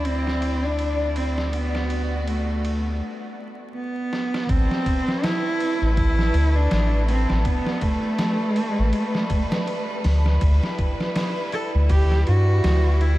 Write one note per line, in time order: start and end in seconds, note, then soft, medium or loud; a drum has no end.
0.00 3.02 D2 medium
0.00 2.98 G3 medium
0.00 1.50 E4 medium
0.00 2.98 D5 medium
0.05 0.65 C4 loud
0.05 ride medium
0.27 snare soft
0.42 ride medium
0.64 1.18 D4 medium
0.79 ride medium
1.16 1.53 C4 medium
1.16 ride medium
1.38 snare soft
1.53 2.24 B3 medium
1.53 3.00 F#4 medium
1.53 ride medium
1.75 snare soft
1.90 ride medium
2.28 3.35 A3 medium
2.28 ride medium
2.65 ride medium
3.75 4.51 B3 medium
4.13 snare medium
4.34 snare medium
4.49 4.68 A1 medium
4.49 13.18 G3 medium
4.49 10.38 A3 medium
4.49 5.25 C4 loud
4.49 7.43 B4 medium
4.49 kick loud
4.49 ride medium
4.71 snare soft
4.86 kick loud
4.86 ride medium
5.08 snare soft
5.23 5.96 E4 loud
5.23 snare loud
5.23 ride medium
5.60 ride medium
5.82 6.32 A1 medium
5.96 6.57 E4 loud
5.96 kick loud
5.96 ride medium
6.19 snare soft
6.34 6.68 D2 medium
6.34 ride medium
6.55 7.07 D4 loud
6.71 7.26 A1 medium
6.71 snare loud
6.71 ride medium
7.08 7.43 C4 medium
7.08 ride medium
7.30 7.44 A1 medium
7.30 snare medium
7.44 7.85 B3 loud
7.44 13.18 B4 medium
7.44 kick loud
7.44 ride loud
7.67 snare soft
7.81 10.05 A3 loud
7.81 kick medium
7.81 ride medium
8.19 snare loud
8.19 ride medium
8.56 ride medium
8.79 8.93 A1 medium
8.93 ride medium
9.15 snare soft
9.30 kick loud
9.30 ride medium
9.52 snare loud
9.68 ride medium
10.04 10.38 D2 loud
10.04 snare medium
10.04 open hi-hat medium
10.26 snare medium
10.41 10.61 D2 loud
10.41 13.18 E4 medium
10.41 kick loud
10.41 ride medium
10.63 snare medium
10.78 kick loud
10.78 ride medium
11.00 snare soft
11.16 snare loud
11.16 ride medium
11.52 11.70 A4 loud
11.52 ride medium
11.75 12.25 D2 medium
11.90 12.25 G4 loud
11.90 kick loud
11.90 ride medium
12.12 snare soft
12.27 12.61 G2 medium
12.27 13.03 F#4 loud
12.27 ride medium
12.64 13.18 D2 medium
12.64 snare loud
12.64 ride medium
13.01 13.18 E4 loud
13.01 ride medium